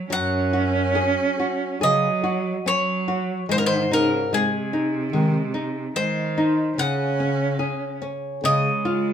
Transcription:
0.00 0.14 C#5 medium
0.10 1.24 F#2 medium
0.10 3.44 F#3 medium
0.10 1.78 C#4 medium
0.10 1.79 F#5 medium
0.53 0.95 F#4 soft
0.95 1.38 G#4 soft
1.39 1.81 F#4 soft
1.81 2.10 C#3 medium
1.81 2.62 F#3 medium
1.81 2.22 G#4 soft
1.81 2.67 D#5 medium
2.24 2.64 F#4 soft
2.66 3.45 F#3 medium
2.66 3.06 C#4 soft
2.66 3.45 C#5 medium
3.08 3.47 F#4 soft
3.49 4.55 G#2 medium
3.49 3.55 D#3 medium
3.49 4.32 G#3 medium
3.49 3.57 C5 medium
3.56 3.62 C#3 medium
3.56 3.63 A#4 medium
3.64 3.89 D#3 medium
3.64 3.92 C5 medium
3.90 4.28 C#3 medium
3.90 4.30 D#4 soft
3.90 4.33 A#4 medium
4.32 5.91 C3 medium
4.32 4.71 G#3 soft
4.32 6.01 G#4 medium
4.73 5.12 D#4 soft
5.12 5.39 D#3 medium
5.12 5.53 G#3 soft
5.54 5.93 D#4 soft
5.96 6.74 D#3 medium
5.96 6.35 G#3 soft
5.96 6.81 C5 medium
6.38 6.77 D#4 soft
6.77 7.85 C#3 medium
6.77 8.40 C#3 medium
6.77 7.98 C#4 medium
6.77 7.99 F#5 medium
7.20 7.60 C#4 soft
7.59 8.00 G#4 medium
8.02 8.42 C#4 soft
8.44 9.13 C#3 medium
8.44 8.71 C#3 medium
8.44 9.13 G#3 medium
8.44 9.13 D#5 medium
8.85 9.13 F4 soft

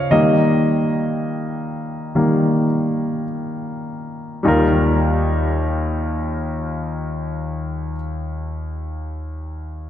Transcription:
0.00 0.12 C#3 soft
0.00 0.13 F3 soft
0.00 0.13 C5 soft
0.00 0.12 C#5 medium
0.00 0.11 D#5 medium
0.00 0.13 F5 medium
0.11 0.77 D#3 soft
0.11 0.77 G3 soft
0.11 0.77 A#3 soft
0.11 3.23 D#5 medium
2.15 2.66 D#3 soft
2.15 2.66 G3 soft
2.15 2.67 A#3 soft
4.43 7.94 D#2 medium
4.43 7.91 G3 soft
4.43 7.93 D#4 soft
4.43 7.95 F4 soft
4.48 7.96 A#4 medium

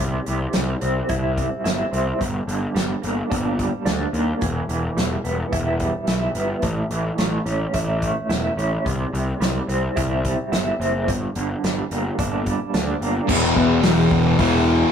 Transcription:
0.00 0.17 C2 medium
0.00 0.25 C3 medium
0.26 0.45 C2 medium
0.26 1.65 C3 medium
0.26 closed hi-hat medium
0.53 0.73 C2 medium
0.53 1.36 G3 medium
0.53 snare medium
0.53 closed hi-hat medium
0.81 1.00 C2 medium
0.81 1.90 C4 medium
0.81 closed hi-hat medium
1.09 1.45 C2 medium
1.09 1.63 E4 medium
1.09 kick medium
1.09 closed hi-hat medium
1.37 2.74 G3 medium
1.37 kick medium
1.37 closed hi-hat soft
1.64 1.83 G1 medium
1.64 2.20 E4 medium
1.64 snare medium
1.64 closed hi-hat medium
1.91 2.11 C2 medium
1.91 2.20 C4 medium
1.91 closed hi-hat medium
2.19 2.39 G1 medium
2.19 3.58 G2 medium
2.19 kick medium
2.19 closed hi-hat medium
2.47 2.66 G1 medium
2.47 3.86 D3 medium
2.47 closed hi-hat medium
2.75 2.93 G1 medium
2.75 3.57 G3 medium
2.75 snare medium
2.75 closed hi-hat medium
3.02 3.22 G1 medium
3.02 4.12 A#3 medium
3.02 closed hi-hat medium
3.30 3.67 G1 medium
3.30 3.84 D4 medium
3.30 kick medium
3.30 closed hi-hat medium
3.58 4.42 G3 medium
3.58 kick medium
3.58 closed hi-hat soft
3.85 4.04 D2 medium
3.85 4.42 D4 medium
3.85 snare medium
3.85 closed hi-hat medium
4.13 4.31 D#2 medium
4.13 4.42 A#3 medium
4.13 closed hi-hat soft
4.41 4.60 E1 medium
4.41 4.69 E3 medium
4.41 kick medium
4.41 closed hi-hat medium
4.69 4.87 E1 medium
4.69 6.90 E3 medium
4.69 closed hi-hat soft
4.97 5.15 E1 medium
4.97 5.78 G3 medium
4.97 snare medium
4.97 closed hi-hat medium
5.24 5.43 E1 medium
5.24 6.34 B3 medium
5.24 closed hi-hat soft
5.52 5.88 E1 medium
5.52 6.07 E4 medium
5.52 kick loud
5.52 closed hi-hat medium
5.79 6.63 G3 medium
5.79 kick medium
5.79 closed hi-hat soft
6.07 6.26 B1 medium
6.07 7.73 E4 medium
6.07 snare medium
6.07 closed hi-hat medium
6.35 6.53 G1 medium
6.35 6.64 B3 medium
6.35 closed hi-hat medium
6.62 6.81 A1 medium
6.62 8.02 A2 medium
6.62 kick medium
6.62 closed hi-hat medium
6.91 7.09 A1 medium
6.91 8.30 E3 medium
6.91 closed hi-hat medium
7.18 7.37 A1 medium
7.18 8.01 A3 medium
7.18 snare medium
7.18 closed hi-hat medium
7.46 7.64 A1 medium
7.46 8.56 C#4 medium
7.46 closed hi-hat soft
7.74 8.10 A1 medium
7.74 8.28 E4 medium
7.74 kick medium
7.74 closed hi-hat medium
8.02 8.86 A3 medium
8.02 kick medium
8.02 closed hi-hat soft
8.29 8.48 E1 medium
8.29 8.86 E4 medium
8.29 snare medium
8.29 closed hi-hat medium
8.57 8.76 A1 medium
8.57 8.86 C#4 medium
8.57 closed hi-hat soft
8.85 9.04 C2 medium
8.85 9.11 C3 medium
8.85 kick loud
8.85 closed hi-hat medium
9.12 9.31 C2 medium
9.12 10.52 C3 medium
9.12 closed hi-hat soft
9.40 9.59 C2 medium
9.40 10.24 G3 medium
9.40 snare medium
9.40 closed hi-hat medium
9.68 9.87 C2 medium
9.68 10.79 C4 medium
9.68 closed hi-hat soft
9.96 10.33 C2 medium
9.96 10.51 E4 medium
9.96 kick loud
9.96 closed hi-hat medium
10.24 11.64 G3 medium
10.24 kick medium
10.24 closed hi-hat medium
10.52 10.70 G1 medium
10.52 11.08 E4 medium
10.52 snare medium
10.52 closed hi-hat medium
10.80 11.08 F#1 medium
10.80 11.08 C4 medium
10.80 closed hi-hat soft
11.08 11.26 G1 medium
11.08 12.46 G2 medium
11.08 kick medium
11.08 closed hi-hat medium
11.35 11.54 G1 medium
11.35 12.74 D3 medium
11.35 closed hi-hat medium
11.64 11.82 G1 medium
11.64 12.45 G3 medium
11.64 snare medium
11.64 closed hi-hat medium
11.91 12.09 G1 medium
11.91 13.01 A#3 medium
11.91 closed hi-hat medium
12.19 12.54 G1 medium
12.19 12.73 D4 medium
12.19 kick medium
12.19 closed hi-hat medium
12.46 13.29 G3 medium
12.46 kick medium
12.46 closed hi-hat medium
12.74 12.92 D2 medium
12.74 13.29 D4 medium
12.74 snare medium
12.74 closed hi-hat medium
13.01 13.19 G1 medium
13.01 13.29 A#3 medium
13.01 closed hi-hat soft
13.28 13.51 E1 medium
13.28 14.37 E2 medium
13.28 14.38 B2 medium
13.28 14.40 E3 medium
13.28 kick loud
13.28 crash loud
13.56 13.78 E2 loud
13.56 kick medium
13.83 14.06 E1 medium
13.83 snare loud
13.83 open hi-hat medium
14.11 14.33 E1 medium
14.11 kick medium
14.39 14.83 E1 medium
14.39 14.92 E2 medium
14.39 14.92 B2 medium
14.39 14.92 E3 medium
14.39 kick loud
14.39 open hi-hat medium

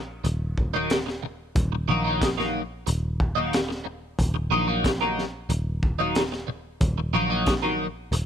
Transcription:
0.00 0.21 A#1 medium
0.24 1.52 D#1 loud
0.24 muted clean electric guitar stroke soft
0.24 closed hi-hat medium
0.58 kick medium
0.74 0.96 D#3 medium
0.74 0.96 F#3 medium
0.74 0.96 A#3 medium
0.74 0.95 D#4 medium
0.90 snare loud
0.90 closed hi-hat medium
1.06 muted clean electric guitar stroke medium
1.06 snare soft
1.23 muted clean electric guitar stroke soft
1.55 1.86 D#1 loud
1.55 kick loud
1.55 closed hi-hat medium
1.72 muted clean electric guitar stroke soft
1.88 2.83 A#1 medium
1.88 2.04 D#3 medium
1.88 2.04 F#3 medium
1.88 2.03 A#3 medium
1.88 2.03 D#4 medium
2.04 2.27 D#3 medium
2.04 2.27 F#3 medium
2.04 2.26 A#3 medium
2.04 2.26 D#4 loud
2.22 kick medium
2.22 snare loud
2.22 closed hi-hat medium
2.38 2.60 D#3 medium
2.38 2.60 F#3 medium
2.38 2.60 A#3 medium
2.38 2.59 D#4 medium
2.38 snare soft
2.87 4.15 D#1 loud
2.87 muted clean electric guitar stroke soft
2.87 closed hi-hat medium
3.20 kick medium
3.35 3.58 D#3 medium
3.35 3.58 F#3 medium
3.35 3.58 A#3 medium
3.35 3.57 D#4 medium
3.53 snare loud
3.53 closed hi-hat medium
3.69 muted clean electric guitar stroke medium
3.69 snare soft
3.84 muted clean electric guitar stroke soft
4.19 4.49 D#1 loud
4.19 kick loud
4.19 closed hi-hat medium
4.34 muted clean electric guitar stroke medium
4.51 5.46 A#1 medium
4.51 4.67 D#3 medium
4.51 4.66 F#3 medium
4.51 4.66 A#3 medium
4.51 4.66 D#4 medium
4.67 4.89 D#3 medium
4.67 4.89 F#3 medium
4.67 4.89 A#3 medium
4.67 4.89 D#4 medium
4.84 kick medium
4.84 snare loud
4.84 closed hi-hat medium
5.01 5.23 D#3 medium
5.01 5.23 F#3 medium
5.01 5.22 A#3 medium
5.01 5.22 D#4 medium
5.19 snare soft
5.49 6.77 D#1 loud
5.49 muted clean electric guitar stroke soft
5.49 closed hi-hat medium
5.83 kick medium
5.99 6.21 D#3 medium
5.99 6.21 F#3 medium
5.99 6.21 A#3 medium
5.99 6.21 D#4 medium
6.15 snare loud
6.15 closed hi-hat medium
6.32 muted clean electric guitar stroke soft
6.32 snare soft
6.47 muted clean electric guitar stroke soft
6.81 7.12 D#1 loud
6.81 kick loud
6.81 closed hi-hat medium
6.98 muted clean electric guitar stroke soft
7.13 8.09 A#1 medium
7.13 7.30 D#3 medium
7.13 7.30 F#3 medium
7.13 7.29 A#3 medium
7.13 7.29 D#4 medium
7.30 7.52 D#3 medium
7.30 7.52 F#3 medium
7.30 7.52 A#3 medium
7.30 7.52 D#4 loud
7.46 kick medium
7.46 snare loud
7.46 closed hi-hat medium
7.62 7.85 D#3 medium
7.62 7.85 F#3 medium
7.62 7.85 A#3 medium
7.62 7.85 D#4 medium
8.12 8.26 D#1 loud
8.12 muted clean electric guitar stroke soft
8.12 closed hi-hat medium

